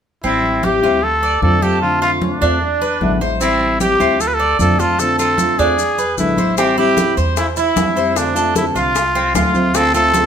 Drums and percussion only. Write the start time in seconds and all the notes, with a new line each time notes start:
0.24 high conga
0.43 high conga
0.63 high conga
0.83 high conga
1.03 high conga
1.23 high conga
1.42 high conga
1.62 high conga
1.82 high conga
2.02 high conga
2.22 high conga
2.41 high conga
2.61 high conga
2.81 high conga
3.01 high conga
3.21 high conga
3.41 high conga, maracas
3.61 high conga
3.80 high conga, maracas
4.00 high conga, maracas
4.20 high conga, maracas
4.39 high conga
4.59 high conga, maracas
4.79 high conga, maracas
4.99 high conga, maracas
5.19 high conga, maracas
5.38 high conga, maracas
5.58 high conga, maracas
5.78 high conga, maracas
5.98 high conga, maracas
6.18 high conga, maracas
6.37 high conga, maracas
6.57 high bongo, high conga, maracas
6.77 high conga
6.97 high bongo, high conga, maracas
7.17 high conga, maracas
7.37 high bongo, high conga, maracas
7.57 high conga, maracas
7.76 high bongo, low bongo, high conga, maracas
7.97 maracas
8.16 high bongo, high conga, maracas
8.36 high bongo, high conga, maracas
8.56 high bongo, high conga, maracas
8.76 high bongo, high conga, maracas
8.95 high bongo, high conga, maracas
9.15 high bongo, high conga
9.35 high bongo, low bongo, high conga, maracas
9.54 high conga, maracas
9.74 high bongo, maracas
9.94 high conga, maracas
10.14 high bongo, high conga, maracas